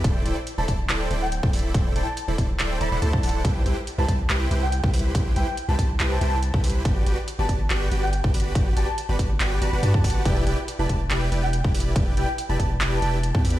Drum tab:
HH |x---x---x---x---x---x---x---ox--|x---x---x---x---x---x---x---ox--|x---x---x---x---x---x---x---ox--|x---x---x---x---x---x---x---ox--|
CP |----------------x---------------|----------------x---------------|----------------x---------------|----------------x---------------|
BD |o-----------o-------------o-----|o-----------o-------------o-----|o-----------o-------------o-----|o-----------o-------------o-----|

HH |x---x---x---x---x---x---x---ox--|x---x---x---x---x---x---x---ox--|x---x---x---x---x---x---x---ox--|x---x---x---x---x---x---x---ox--|
CP |----------------x---------------|----------------x---------------|----------------x---------------|----------------x---------------|
BD |o-----------o-------------o-----|o-----------o-------------o-o---|o-----------o-------------o-----|o-----------o-------------o-----|